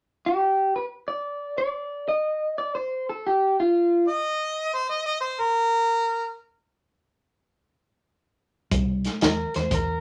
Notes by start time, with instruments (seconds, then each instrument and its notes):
0.26 clean electric guitar G4
0.76 clean electric guitar B4
1.08 clean electric guitar D5
1.58 clean electric guitar D5
2.08 clean electric guitar D#5
2.58 clean electric guitar D5
2.75 clean electric guitar C5
3.09 clean electric guitar A4
3.27 clean electric guitar G4
3.60 clean electric guitar F4
4.08 harmonica D#5
4.74 harmonica C5
4.89 harmonica D#5
5.06 harmonica D#5
5.21 harmonica C5
5.41 harmonica A#4
8.71 fingered electric bass C2, kick, closed hi-hat
9.04 snare, closed hi-hat
9.21 fingered electric bass E2, clean electric guitar A#4, snare, closed hi-hat
9.54 fingered electric bass E2, clean electric guitar C5, snare, closed hi-hat
9.71 fingered electric bass E2, clean electric guitar A#4, kick, closed hi-hat